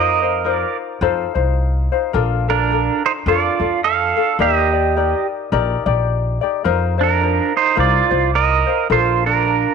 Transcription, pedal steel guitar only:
0.00 0.77 A#4 medium
0.00 0.50 D#5 medium
0.50 0.77 D5 medium
2.50 3.01 D4 medium
2.50 3.05 A#4 medium
3.06 3.12 D#4 medium
3.06 3.11 C5 medium
3.28 3.80 F4 medium
3.28 3.80 D5 medium
3.84 4.36 A4 medium
3.84 4.41 F5 medium
4.41 5.26 G4 medium
4.41 5.26 D#5 medium
7.01 7.52 D4 medium
7.01 7.56 A#4 medium
7.57 7.77 D#4 medium
7.57 7.79 C5 medium
7.79 8.30 F4 medium
7.79 8.35 D5 medium
8.35 8.87 A#4 medium
8.35 8.87 D#5 medium
8.92 9.23 F4 medium
8.92 9.25 C5 medium
9.26 9.74 D4 medium
9.26 9.74 A#4 medium

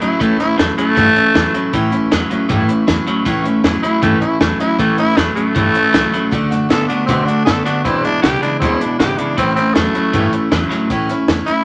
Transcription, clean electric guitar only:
0.01 0.18 A2 medium
0.01 0.19 F#3 loud
0.19 0.54 A2 medium
0.19 0.54 E3 medium
0.57 0.75 A2 medium
0.57 0.75 F#3 loud
0.78 0.94 A2 medium
0.78 0.95 F#3 medium
0.96 1.30 A2 medium
0.96 1.31 E3 medium
1.35 1.52 A2 medium
1.35 1.52 F#3 medium
1.54 1.71 A2 medium
1.54 1.71 F#3 medium
1.74 2.08 A2 medium
1.74 2.08 E3 medium
2.11 2.29 A2 medium
2.11 2.29 F#3 loud
2.30 2.48 A2 medium
2.30 2.48 F#3 medium
2.49 2.84 A2 medium
2.49 2.84 E3 medium
2.87 3.05 A2 medium
2.87 3.05 F#3 medium
3.07 3.24 A2 medium
3.07 3.24 F#3 medium
3.25 3.60 A2 medium
3.25 3.60 E3 medium
3.64 3.81 A2 loud
3.64 3.82 F#3 medium
3.83 4.00 A2 medium
3.83 4.01 F#3 medium
4.02 4.37 A2 medium
4.02 4.37 E3 medium
4.41 4.58 A2 medium
4.41 4.58 F#3 medium
4.61 4.77 A2 medium
4.61 4.78 F#3 medium
4.79 5.13 A2 medium
4.79 5.14 E3 medium
5.17 5.34 A2 medium
5.17 5.35 F#3 medium
5.36 5.54 A2 medium
5.36 5.54 F#3 medium
5.55 5.90 A2 medium
5.55 5.90 E3 medium
5.93 6.11 A2 medium
5.93 6.11 F#3 medium
6.13 6.30 A2 medium
6.13 6.30 F#3 medium
6.33 6.67 D3 medium
6.33 6.67 A3 medium
6.70 6.87 D3 medium
6.70 6.88 B3 loud
6.90 7.07 D3 medium
6.90 7.07 B3 medium
7.09 7.43 D3 medium
7.09 7.43 A3 loud
7.46 7.64 D3 medium
7.46 7.64 B3 medium
7.65 7.83 D3 medium
7.65 7.83 B3 medium
7.84 8.19 E2 medium
7.84 8.19 B2 medium
8.22 8.40 E2 medium
8.22 8.40 C#3 loud
8.41 8.59 E2 medium
8.41 8.59 C#3 medium
8.61 8.95 E2 medium
8.61 8.96 B2 medium
9.00 9.17 E2 medium
9.00 9.17 C#3 medium
9.19 9.36 E2 medium
9.19 9.36 C#3 medium
9.37 9.72 A2 medium
9.37 9.72 E3 medium
9.76 9.93 A2 medium
9.76 9.93 F#3 loud
9.94 10.12 A2 medium
9.94 10.12 F#3 medium
10.13 10.48 A2 medium
10.13 10.48 E3 medium
10.51 10.68 A2 medium
10.51 10.70 F#3 medium
10.70 10.88 A2 medium
10.70 10.88 F#3 medium

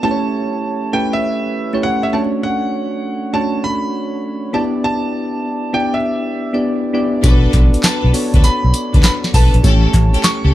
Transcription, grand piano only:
0.03 0.96 A5 loud
0.93 1.12 G5 loud
1.13 1.70 E5 loud
1.83 2.04 F#5 loud
2.03 2.14 E5 medium
2.13 2.20 A5 medium
2.43 3.36 F#5 medium
3.34 3.65 A5 loud
3.64 4.50 B5 loud
4.54 4.61 A5 medium
4.84 5.77 A5 loud
5.74 5.95 G5 medium
5.94 6.50 E5 medium
7.84 8.46 A5 medium
8.44 9.00 B5 loud
9.04 9.11 B5 loud
9.34 10.27 A5 loud
10.24 10.54 C#6 loud

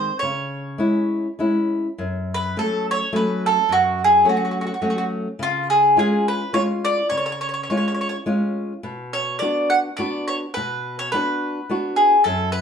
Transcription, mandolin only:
0.00 0.18 C5 medium
0.19 1.33 C#5 medium
2.34 2.57 B4 medium
2.59 2.85 A4 medium
2.91 3.14 C#5 medium
3.16 3.45 B4 medium
3.46 3.72 A4 medium
3.72 4.02 F#4 medium
4.04 4.29 G#4 medium
4.29 4.35 F#4 medium
4.37 4.42 F#4 soft
4.45 4.50 F#4 soft
4.51 4.57 F#4 soft
4.61 4.65 F#4 soft
4.67 4.72 F#4 soft
4.74 4.79 F#4 soft
4.82 4.87 F#4 soft
4.90 4.95 F#4 medium
4.98 5.03 F#4 soft
5.43 5.70 F4 medium
5.70 5.97 G#4 medium
5.99 6.25 G#4 medium
6.28 6.52 B4 medium
6.54 6.62 C#5 loud
6.85 7.09 D5 loud
7.10 7.16 C#5 medium
7.17 7.25 C#5 medium
7.26 7.31 C#5 medium
7.32 7.40 C#5 medium
7.41 7.48 C#5 medium
7.49 7.52 C#5 medium
7.54 7.62 C#5 medium
7.63 7.69 C#5 medium
7.70 7.76 C#5 medium
7.77 7.86 C#5 soft
7.88 7.93 C#5 soft
7.95 8.00 C#5 soft
8.01 8.08 C#5 medium
8.09 8.16 C#5 medium
9.13 9.39 C#5 medium
9.39 9.68 D5 medium
9.70 9.77 F#5 medium
9.97 10.27 D5 medium
10.28 10.35 C#5 medium
10.54 10.96 B4 medium
10.99 11.12 C#5 medium
11.12 12.01 B4 medium
11.96 12.22 G#4 medium
12.24 12.52 A4 medium
12.52 12.61 B4 medium

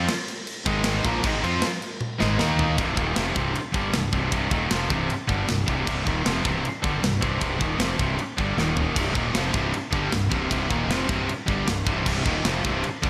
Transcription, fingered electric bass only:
0.66 1.02 G#1 loud
1.05 1.23 A#1 loud
1.24 1.42 G#1 loud
1.43 1.61 F2 medium
2.22 2.39 G#1 loud
2.40 2.76 D#2 loud
2.79 2.96 C1 medium
2.98 3.16 D#1 medium
3.17 3.35 F1 loud
3.36 3.54 C1 medium
3.74 3.92 G1 medium
3.95 4.12 C1 medium
4.13 4.31 C1 medium
4.32 4.50 C1 medium
4.51 4.69 D#1 medium
4.71 4.89 F1 medium
4.91 5.09 C1 medium
5.30 5.47 G1 loud
5.49 5.67 C1 medium
5.68 5.86 C1 medium
5.87 6.05 C1 medium
6.07 6.24 D#1 medium
6.26 6.44 F1 loud
6.45 6.63 C1 loud
6.84 7.02 G1 medium
7.03 7.21 C1 medium
7.23 7.40 C1 medium
7.42 7.60 C1 medium
7.61 7.78 D#1 medium
7.78 7.97 F1 loud
7.99 8.17 C1 medium
8.39 8.56 G1 medium
8.57 8.93 D#1 medium
8.96 9.14 C1 loud
9.15 9.33 D#1 medium
9.35 9.53 F1 medium
9.54 9.72 C1 medium
9.93 10.11 G1 medium
10.13 10.31 C1 medium
10.31 10.50 C1 medium
10.51 10.69 C1 medium
10.71 10.87 D#1 medium
10.88 11.07 F1 loud
11.09 11.27 C1 medium
11.49 11.66 G1 medium
11.67 11.85 C1 medium
11.87 12.05 C1 medium
12.06 12.24 C1 medium
12.26 12.44 D#1 medium
12.45 12.63 F1 loud
12.65 12.83 C1 medium
13.04 13.10 G1 medium

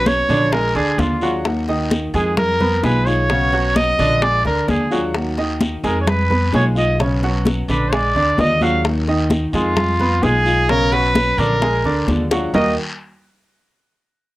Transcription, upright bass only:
0.00 0.22 B1 medium
0.29 0.72 A#1 medium
0.75 0.96 D2 medium
0.98 2.07 D#2 medium
2.14 2.79 F2 loud
2.83 3.92 B1 medium
3.99 4.42 A#1 loud
4.45 4.66 D2 medium
4.68 5.77 D#2 medium
5.84 6.49 F2 loud
6.53 7.62 B1 medium
7.68 8.12 A#1 medium
8.14 8.36 D2 medium
8.38 9.47 D#2 medium
9.53 10.19 F2 loud
10.22 11.32 B1 medium
11.38 11.81 A#1 loud
11.84 12.06 D2 medium
12.07 12.48 D#2 medium
12.53 12.75 D#2 medium

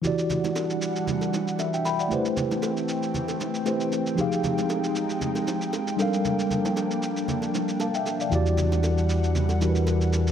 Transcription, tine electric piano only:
0.02 2.06 E3 medium
0.02 2.07 E4 medium
0.02 2.07 F#4 medium
0.06 2.08 G4 medium
0.06 1.58 D5 medium
1.60 1.73 E5 medium
1.74 1.85 E5 medium
1.74 1.85 G5 medium
1.85 1.99 G5 medium
1.85 1.99 B5 medium
2.00 2.25 D5 medium
2.00 2.24 F#5 medium
2.08 3.62 A3 medium
2.08 3.63 E4 medium
2.08 3.63 G4 medium
2.13 3.64 B4 medium
2.13 3.65 C5 medium
3.65 4.17 A3 medium
3.65 4.18 E4 soft
3.65 4.17 G4 soft
3.65 4.19 B4 soft
3.65 4.19 C5 medium
4.15 5.94 F3 medium
4.15 5.95 D#4 medium
4.15 5.96 G4 medium
4.20 5.96 G#4 medium
4.20 5.97 F5 medium
5.97 8.01 G3 medium
5.97 8.01 D4 medium
5.97 8.02 A4 medium
6.01 8.03 A#4 medium
6.01 7.53 F5 medium
7.80 7.94 F5 medium
7.80 7.94 A5 medium
7.95 8.19 E5 medium
7.95 8.19 G5 medium
8.21 8.34 D5 medium
8.21 8.45 F5 medium
8.30 9.57 E3 medium
8.30 9.58 E4 medium
8.30 9.59 F#4 medium
8.34 9.59 G4 medium
8.34 9.60 D5 medium
9.60 10.32 E3 medium
9.60 10.32 E4 soft
9.60 10.32 F#4 soft
9.60 10.32 G4 medium
9.60 9.69 A#4 soft
9.69 10.32 B4 medium

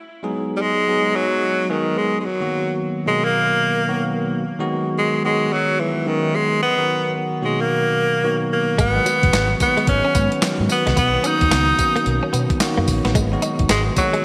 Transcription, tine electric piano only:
0.23 0.62 F#3 loud
0.23 0.62 G#3 medium
0.23 0.62 B3 medium
0.23 0.62 D#4 medium
0.23 0.62 G#4 loud
0.87 1.39 F#3 medium
0.87 1.39 G#3 medium
0.87 1.39 B3 medium
0.87 1.39 D#4 medium
0.87 1.39 G#4 medium
1.69 2.14 F#3 medium
1.69 2.15 G#3 medium
1.69 2.15 B3 medium
1.69 2.15 D#4 medium
1.69 2.15 G#4 medium
2.41 2.79 D#3 medium
2.41 2.80 F#3 medium
2.41 2.80 A#3 medium
2.41 2.80 B3 medium
2.41 2.80 F#4 loud
3.06 3.58 B2 medium
3.06 3.57 D#3 medium
3.06 3.57 F#3 medium
3.06 3.57 A#3 medium
3.06 3.58 D#4 medium
3.88 4.33 D#3 medium
3.88 4.33 F#3 medium
3.88 4.33 A#3 medium
3.88 4.33 B3 medium
3.88 4.33 F#4 loud
4.59 4.98 D#3 loud
4.59 4.98 F#3 loud
4.59 4.98 G#3 loud
4.59 4.98 B3 medium
4.59 4.99 F#4 loud
5.24 5.75 D#3 medium
5.24 5.76 F#3 medium
5.24 5.76 G#3 medium
5.24 5.76 B3 medium
5.24 5.76 F#4 medium
6.06 6.51 D#3 medium
6.06 6.51 F#3 medium
6.06 6.51 G#3 medium
6.06 6.51 B3 medium
6.06 6.51 C#4 medium
6.77 7.16 D#3 medium
6.77 7.16 F#3 medium
6.77 7.16 B3 medium
6.77 7.17 F#4 loud
6.77 7.16 A#4 medium
7.42 7.94 B2 medium
7.42 7.93 D#3 medium
7.42 7.93 F#3 medium
7.42 7.94 A#3 medium
7.42 7.94 F#4 medium
8.24 8.69 D#3 medium
8.24 8.69 F#3 medium
8.24 8.69 A#3 medium
8.24 8.69 B3 medium
8.24 8.69 F#4 loud
8.95 9.34 D#3 medium
8.95 9.34 F#3 medium
8.95 9.34 G#3 medium
8.95 9.35 B3 medium
8.95 9.35 F#4 loud
9.60 10.11 D#3 medium
9.60 10.12 F#3 medium
9.60 10.12 G#3 medium
9.60 9.69 A#3 medium
9.60 10.12 F#4 medium
9.68 10.15 B3 medium
10.42 10.87 D#3 medium
10.42 10.87 F#3 medium
10.42 10.87 G#3 medium
10.42 10.88 B3 medium
10.42 10.88 F#4 medium
11.14 11.53 D#3 medium
11.14 11.53 F#3 medium
11.14 11.53 A#3 medium
11.14 11.53 B3 medium
11.14 11.53 F#4 medium
11.79 12.30 D#3 medium
11.79 12.30 F#3 medium
11.79 12.30 A#3 medium
11.79 12.30 B3 medium
11.79 12.31 C#4 medium
12.61 13.06 D#3 medium
12.61 13.06 F#3 medium
12.61 13.06 A#3 medium
12.61 13.06 B3 medium
12.61 13.06 F#4 loud
13.32 13.71 D#3 loud
13.32 13.71 F#3 loud
13.32 13.71 G#3 medium
13.32 13.71 B3 medium
13.32 13.71 F#4 loud
13.97 14.25 D#3 medium
13.97 14.25 F#3 medium
13.97 14.25 G#3 medium
13.97 14.05 A#3 medium
13.97 14.25 F#4 loud
14.04 14.25 B3 medium

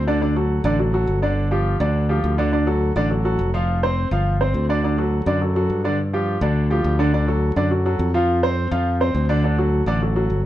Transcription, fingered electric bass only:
0.00 0.59 D2 medium
0.64 1.05 A1 loud
1.07 1.74 G1 medium
1.80 2.20 D2 loud
2.24 2.90 D2 medium
2.96 3.36 A1 loud
3.39 4.06 F1 loud
4.11 4.51 G1 loud
4.54 5.21 D2 loud
5.26 5.67 F#2 loud
5.70 6.36 G2 medium
6.41 6.82 D2 loud
6.84 7.51 D2 loud
7.56 7.97 F#2 loud
7.99 8.66 F2 loud
8.71 9.12 F2 loud
9.15 9.81 D2 loud
9.86 10.27 A1 loud
10.30 10.46 G1 medium

